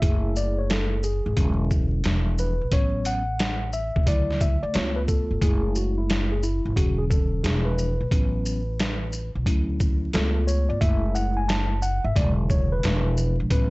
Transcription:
0.00 1.21 F#1 loud
0.00 1.00 A3 medium
0.00 1.00 E4 medium
0.00 0.99 G#4 medium
0.00 0.39 E5 loud
0.00 kick loud
0.00 closed hi-hat loud
0.36 0.59 D5 medium
0.36 shaker medium
0.58 0.69 C#5 medium
0.70 1.05 A4 medium
0.70 snare loud
0.70 closed hi-hat medium
1.03 1.67 G#4 medium
1.03 shaker soft
1.26 1.36 G#1 medium
1.36 2.01 E1 loud
1.36 2.01 D3 medium
1.36 2.01 F#3 medium
1.36 2.01 G#3 medium
1.36 2.02 C#4 medium
1.36 kick medium
1.36 closed hi-hat medium
1.71 kick loud
1.71 shaker medium
2.04 2.57 E1 loud
2.04 2.53 F3 medium
2.04 2.53 G#3 medium
2.04 2.54 D4 medium
2.04 snare loud
2.04 closed hi-hat medium
2.38 2.74 B4 loud
2.38 shaker medium
2.61 2.71 A#1 medium
2.71 3.91 A1 loud
2.71 3.20 F#3 medium
2.71 3.21 B3 medium
2.71 3.21 C#4 medium
2.71 3.07 C#5 loud
2.71 kick loud
2.71 closed hi-hat loud
3.05 3.70 F#5 loud
3.05 closed hi-hat medium
3.05 shaker medium
3.39 snare loud
3.39 closed hi-hat medium
3.73 4.08 E5 loud
3.73 shaker soft
3.96 4.07 B1 medium
3.96 kick medium
4.06 4.58 D2 loud
4.06 4.56 C#3 medium
4.06 4.56 F#3 medium
4.06 4.56 E4 medium
4.06 4.42 D5 loud
4.06 kick medium
4.06 closed hi-hat medium
4.31 snare soft
4.41 4.61 E5 medium
4.41 kick loud
4.41 closed hi-hat soft
4.41 shaker soft
4.63 4.73 D2 medium
4.63 4.74 D5 loud
4.73 5.27 C#2 loud
4.73 5.38 A3 medium
4.73 5.38 B3 medium
4.73 5.39 F4 medium
4.73 4.97 C#5 medium
4.73 snare loud
4.73 closed hi-hat medium
4.96 5.02 B4 medium
5.08 5.43 A4 medium
5.08 kick medium
5.08 shaker medium
5.31 5.41 G1 medium
5.41 6.61 F#1 loud
5.41 6.39 G#3 medium
5.41 6.39 A3 medium
5.41 5.97 E4 medium
5.41 5.77 G#4 medium
5.41 kick loud
5.41 closed hi-hat medium
5.75 5.98 F#4 medium
5.75 shaker medium
5.98 6.32 E4 medium
6.10 snare loud
6.10 closed hi-hat medium
6.32 6.43 G#4 medium
6.43 6.74 E4 medium
6.43 shaker soft
6.65 6.76 G#1 medium
6.76 7.40 E1 loud
6.76 7.40 D3 medium
6.76 7.40 F#3 medium
6.76 7.41 C#4 medium
6.76 6.99 F#4 medium
6.76 6.97 G#4 medium
6.76 kick medium
6.76 closed hi-hat loud
6.98 7.04 G#4 medium
7.10 7.42 A4 medium
7.10 kick loud
7.10 shaker soft
7.43 7.96 E1 loud
7.43 7.92 F3 medium
7.43 7.92 G#3 medium
7.43 7.93 D4 medium
7.43 7.66 G#4 medium
7.43 snare loud
7.43 closed hi-hat medium
7.65 9.30 B4 medium
7.78 shaker medium
8.01 8.11 A#1 medium
8.11 9.31 A1 loud
8.11 8.60 F#3 medium
8.11 8.60 B3 medium
8.11 8.60 C#4 medium
8.11 kick loud
8.11 closed hi-hat loud
8.46 shaker medium
8.80 snare loud
8.80 closed hi-hat medium
9.13 shaker soft
9.35 9.46 B1 medium
9.46 10.10 D2 loud
9.46 10.10 F#3 medium
9.46 10.10 C#4 medium
9.46 10.11 E4 medium
9.46 kick medium
9.46 closed hi-hat loud
9.80 kick loud
9.80 shaker medium
10.13 10.66 C#2 loud
10.13 10.77 A3 medium
10.13 10.78 B3 medium
10.13 10.78 F4 medium
10.13 10.49 A4 medium
10.13 snare loud
10.13 closed hi-hat medium
10.47 10.68 C#5 loud
10.47 shaker medium
10.69 10.80 G1 medium
10.69 10.80 D5 medium
10.80 12.00 F#1 loud
10.80 11.78 G#3 medium
10.80 11.78 A3 medium
10.80 11.78 E4 medium
10.80 11.16 E5 loud
10.80 kick loud
10.80 closed hi-hat loud
11.15 11.37 F#5 loud
11.15 shaker medium
11.37 11.49 G#5 loud
11.49 11.83 A5 loud
11.49 snare loud
11.49 closed hi-hat medium
11.82 12.05 F#5 loud
11.82 shaker soft
12.04 12.15 G#1 medium
12.04 12.17 E5 loud
12.16 12.79 E1 loud
12.16 12.80 C#3 medium
12.16 12.80 D3 medium
12.16 12.80 F#3 medium
12.16 12.80 G#3 medium
12.16 12.32 D5 loud
12.16 kick medium
12.16 closed hi-hat loud
12.50 12.73 C#5 loud
12.50 kick loud
12.50 shaker soft
12.72 13.35 B4 loud
12.83 13.35 E1 loud
12.83 13.47 F3 medium
12.83 13.48 G#3 medium
12.83 13.48 D4 medium
12.83 snare loud
12.83 closed hi-hat medium
13.17 shaker medium
13.40 13.50 A#1 medium
13.50 13.70 A1 loud
13.50 13.70 F#3 medium
13.50 13.70 B3 medium
13.50 13.70 C#4 medium
13.50 13.70 B4 loud
13.50 kick loud
13.50 closed hi-hat loud

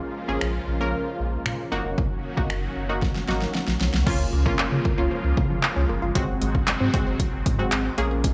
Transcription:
0.00 1.70 C#3 medium
0.00 1.70 F3 medium
0.00 1.68 G#3 medium
0.00 0.15 A#3 medium
0.00 4.03 A#3 medium
0.00 0.15 C#4 medium
0.00 1.70 F4 medium
0.00 0.16 G#4 loud
0.28 0.37 G#1 medium
0.28 0.52 A#3 medium
0.28 0.52 C#4 medium
0.28 0.52 G#4 loud
0.41 0.59 A#1 loud
0.41 finger snap loud
0.68 0.94 A#1 medium
0.80 1.28 A#3 medium
0.80 1.28 C#4 medium
0.80 1.29 A#4 medium
1.20 1.37 A#1 medium
1.46 1.55 A#2 loud
1.46 finger snap loud
1.72 1.81 F#1 loud
1.72 4.04 D#3 medium
1.72 4.04 F#3 medium
1.72 2.24 A#3 medium
1.72 4.04 C#4 medium
1.72 2.24 D#4 medium
1.72 4.04 F#4 medium
1.72 2.24 F#4 loud
1.85 1.94 F1 medium
1.98 2.07 F#1 loud
1.98 kick loud
2.37 2.46 G#1 medium
2.37 2.61 A#3 medium
2.37 2.61 D#4 medium
2.37 2.61 F#4 loud
2.37 kick medium
2.50 2.68 F#1 loud
2.50 finger snap loud
2.76 3.03 F#1 medium
2.89 3.07 A#3 medium
2.89 3.07 D#4 medium
2.89 3.07 F#4 medium
3.02 kick medium
3.02 snare medium
3.15 snare medium
3.28 3.46 G#1 loud
3.28 3.64 A#3 medium
3.28 3.64 D#4 medium
3.28 3.64 F#4 medium
3.28 snare medium
3.41 snare medium
3.54 snare medium
3.67 3.76 A#1 medium
3.67 snare medium
3.81 3.89 B1 medium
3.81 snare medium
3.94 4.02 C2 medium
3.94 snare medium
4.06 4.24 C#2 loud
4.06 6.13 C#3 medium
4.06 4.16 F3 medium
4.06 6.13 F3 medium
4.06 7.94 G#3 medium
4.06 4.24 A#3 medium
4.06 4.25 C#4 medium
4.06 6.13 F4 medium
4.06 4.25 F4 loud
4.06 kick loud
4.06 crash medium
4.33 4.50 C#2 loud
4.33 4.42 A#3 medium
4.45 4.70 A#3 medium
4.45 4.70 C#4 medium
4.45 4.70 F4 loud
4.45 kick medium
4.59 4.64 C#3 soft
4.59 4.68 A#3 medium
4.59 clap loud
4.72 4.81 C#3 loud
4.72 4.81 C#4 medium
4.85 4.94 A#4 medium
4.85 kick loud
4.98 5.07 C#2 medium
4.98 5.46 A#3 medium
4.98 5.46 C#4 medium
4.98 5.46 F4 medium
4.98 5.07 C#5 medium
5.11 5.20 F3 medium
5.24 5.33 C#2 loud
5.24 5.33 F3 medium
5.37 5.55 C#3 loud
5.37 5.46 A#3 medium
5.37 kick medium
5.50 5.59 F3 medium
5.63 5.72 A#3 medium
5.63 clap loud
5.76 5.85 C#2 medium
5.76 5.85 C#4 medium
5.89 5.98 F#1 loud
5.89 5.98 A#3 medium
6.02 6.11 G1 medium
6.02 6.11 F4 medium
6.15 6.33 G#1 loud
6.15 7.96 D#3 medium
6.15 6.24 F#3 medium
6.15 7.96 F#3 medium
6.15 6.51 G#3 medium
6.15 6.51 C4 medium
6.15 7.96 C4 medium
6.15 7.96 F#4 medium
6.15 6.51 F#4 medium
6.15 kick loud
6.15 closed hi-hat loud
6.41 6.59 G#1 loud
6.41 6.50 G#3 medium
6.41 closed hi-hat medium
6.55 kick medium
6.67 6.73 G#2 soft
6.67 6.76 G#3 medium
6.67 clap loud
6.67 closed hi-hat medium
6.80 6.89 G#2 loud
6.80 6.89 C4 medium
6.93 7.23 G#3 medium
6.93 7.23 C4 medium
6.93 7.24 F#4 medium
6.93 7.03 G#4 medium
6.93 kick loud
6.93 closed hi-hat medium
7.07 7.15 G#1 medium
7.07 7.16 C5 medium
7.20 7.29 F#3 medium
7.20 kick medium
7.20 closed hi-hat medium
7.33 7.42 G#1 loud
7.33 7.42 F#3 medium
7.46 7.64 G#2 loud
7.46 7.55 G#3 medium
7.46 kick medium
7.46 closed hi-hat medium
7.59 7.68 F#3 medium
7.59 7.89 G#3 medium
7.59 7.89 C4 medium
7.59 7.89 F#4 loud
7.72 7.90 G#1 medium
7.72 7.81 G#3 medium
7.72 clap loud
7.72 closed hi-hat medium
7.85 7.94 C4 medium
7.98 8.33 A#1 loud
7.98 8.34 C#3 medium
7.98 8.34 F3 medium
7.98 8.34 G#3 medium
7.98 8.34 A#3 medium
7.98 8.07 A#3 medium
7.98 8.34 C#4 medium
7.98 8.34 F4 medium
7.98 8.34 G#4 loud
7.98 closed hi-hat medium
8.11 8.20 G#4 medium
8.24 8.33 G#3 medium
8.24 kick loud
8.24 closed hi-hat loud
8.24 swell medium

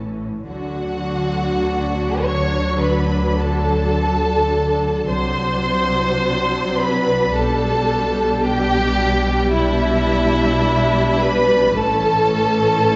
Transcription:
0.00 0.23 A1 soft
0.00 0.47 A2 soft
0.00 0.28 E3 soft
0.00 0.28 C#4 soft
0.47 5.06 D2 soft
0.47 5.06 D3 soft
0.47 5.06 F#3 soft
0.47 5.06 D4 soft
0.47 2.19 F#4 medium
0.47 2.20 F#5 medium
2.22 2.81 C#5 medium
2.22 2.82 C#6 soft
2.80 3.39 B4 medium
2.80 3.40 B5 soft
3.39 5.10 A4 medium
3.39 5.10 A5 medium
5.09 7.31 C2 soft
5.09 7.32 C3 medium
5.09 7.31 F#3 medium
5.09 9.49 D4 soft
5.09 6.76 C5 medium
5.09 6.77 C6 medium
6.79 7.35 B4 medium
6.79 7.35 B5 medium
7.35 11.73 B1 medium
7.35 11.73 B2 medium
7.35 11.73 G3 medium
7.35 8.44 A4 medium
7.35 8.44 A5 medium
8.42 9.52 G4 medium
8.42 9.53 G5 medium
9.52 11.73 D4 medium
9.52 11.17 E4 medium
9.52 11.17 E5 medium
11.20 11.77 B4 medium
11.20 11.77 B5 medium
11.76 12.96 A1 medium
11.76 12.96 A2 medium
11.76 12.96 E3 medium
11.76 12.96 C#4 medium
11.76 12.96 A4 medium
11.76 12.96 A5 medium

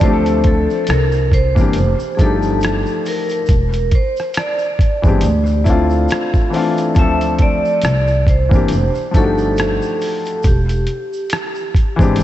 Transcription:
0.01 0.65 D2 loud
0.01 0.88 F3 loud
0.01 0.89 A3 medium
0.01 0.89 C4 medium
0.01 0.47 C5 loud
0.01 kick loud
0.01 closed hi-hat medium
0.05 0.90 D4 medium
0.05 0.11 G4 medium
0.13 0.94 A4 loud
0.26 closed hi-hat soft
0.26 shaker soft
0.44 0.81 A4 medium
0.44 kick medium
0.44 closed hi-hat medium
0.70 shaker soft
0.85 0.89 A4 medium
0.85 closed hi-hat medium
0.85 shaker medium
0.89 1.52 C2 loud
0.89 1.34 A#4 medium
0.89 cross-stick loud
1.12 shaker soft
1.32 2.16 C5 medium
1.32 kick medium
1.32 closed hi-hat medium
1.55 1.74 G1 medium
1.55 1.74 E3 medium
1.55 1.75 A#3 medium
1.55 1.76 C4 medium
1.55 kick medium
1.55 shaker soft
1.60 1.77 D4 medium
1.60 1.77 G4 medium
1.73 1.98 F1 medium
1.73 closed hi-hat medium
1.73 shaker medium
1.99 shaker medium
2.15 3.34 F3 medium
2.15 3.35 A3 medium
2.15 2.20 G#4 medium
2.15 kick medium
2.15 shaker medium
2.19 2.83 G1 loud
2.19 3.36 D4 medium
2.19 3.36 D#4 medium
2.19 3.09 A4 medium
2.19 closed hi-hat medium
2.23 3.37 G4 medium
2.42 shaker soft
2.61 cross-stick loud
2.61 closed hi-hat medium
2.61 shaker medium
2.86 shaker soft
3.05 3.96 A#4 medium
3.05 open hi-hat medium
3.05 shaker soft
3.29 closed hi-hat soft
3.29 shaker medium
3.46 3.89 E1 medium
3.46 kick loud
3.46 closed hi-hat medium
3.46 shaker medium
3.73 closed hi-hat soft
3.73 shaker soft
3.91 4.34 C5 medium
3.91 kick medium
3.91 closed hi-hat medium
4.17 cross-stick soft
4.17 shaker soft
4.34 cross-stick loud
4.34 closed hi-hat medium
4.34 shaker medium
4.38 5.63 D5 medium
4.59 shaker soft
4.79 kick medium
4.79 closed hi-hat medium
5.02 5.24 G1 medium
5.02 5.22 E3 medium
5.02 5.23 G#3 medium
5.02 5.23 C4 medium
5.02 kick medium
5.02 shaker soft
5.07 5.24 D4 medium
5.07 5.25 G4 medium
5.21 6.06 D2 loud
5.21 closed hi-hat medium
5.21 shaker medium
5.46 shaker soft
5.64 6.25 A3 medium
5.64 6.26 C4 medium
5.64 6.24 E4 medium
5.64 kick medium
5.64 closed hi-hat medium
5.64 shaker medium
5.69 6.27 D4 medium
5.69 6.27 F4 loud
5.90 shaker soft
6.09 cross-stick loud
6.09 closed hi-hat medium
6.09 shaker medium
6.34 kick medium
6.34 shaker soft
6.50 6.82 E3 medium
6.50 6.83 A3 medium
6.50 6.84 C4 medium
6.50 open hi-hat soft
6.50 shaker soft
6.55 6.84 D4 medium
6.55 6.85 F4 loud
6.78 closed hi-hat soft
6.78 shaker medium
6.95 7.61 D2 medium
6.95 7.83 F3 medium
6.95 7.84 A3 medium
6.95 7.84 C4 medium
6.95 kick loud
6.95 closed hi-hat medium
6.95 shaker medium
6.99 7.85 D4 medium
6.99 7.86 A4 loud
6.99 7.18 E5 loud
7.21 closed hi-hat soft
7.21 shaker soft
7.39 8.31 D5 loud
7.39 kick medium
7.39 closed hi-hat medium
7.65 shaker soft
7.82 8.48 C2 loud
7.82 cross-stick loud
7.82 closed hi-hat medium
7.82 shaker medium
8.07 shaker soft
8.27 9.18 C5 medium
8.27 kick medium
8.27 closed hi-hat medium
8.49 8.69 G1 medium
8.49 8.69 E3 medium
8.49 8.70 A#3 medium
8.49 8.71 C4 medium
8.49 kick medium
8.49 shaker soft
8.54 8.72 D4 medium
8.54 8.73 G4 medium
8.68 8.93 F1 loud
8.68 closed hi-hat medium
8.68 shaker medium
8.95 shaker soft
9.11 9.78 G1 medium
9.11 10.29 F3 medium
9.11 10.30 A3 medium
9.11 10.31 D4 medium
9.11 kick medium
9.11 closed hi-hat medium
9.11 shaker medium
9.16 10.31 D#4 medium
9.16 9.23 F#4 medium
9.16 10.42 A4 medium
9.24 10.35 G4 medium
9.38 shaker soft
9.57 cross-stick loud
9.57 closed hi-hat medium
9.57 shaker medium
9.82 shaker soft
10.01 open hi-hat soft
10.01 shaker soft
10.25 closed hi-hat soft
10.25 shaker medium
10.43 10.85 E1 loud
10.43 kick loud
10.43 closed hi-hat medium
10.43 shaker medium
10.47 12.16 G4 medium
10.69 closed hi-hat soft
10.69 shaker soft
10.87 closed hi-hat medium
11.13 shaker soft
11.30 cross-stick loud
11.30 closed hi-hat loud
11.30 shaker medium
11.55 shaker medium
11.75 kick medium
11.75 closed hi-hat medium
11.96 12.17 G#1 loud
11.96 12.17 E3 loud
11.96 12.18 G#3 medium
11.96 12.18 C4 medium
11.96 kick loud
12.00 12.19 D4 medium
12.00 12.20 G4 loud
12.00 shaker soft
12.16 12.23 A1 loud
12.16 closed hi-hat medium
12.16 shaker medium

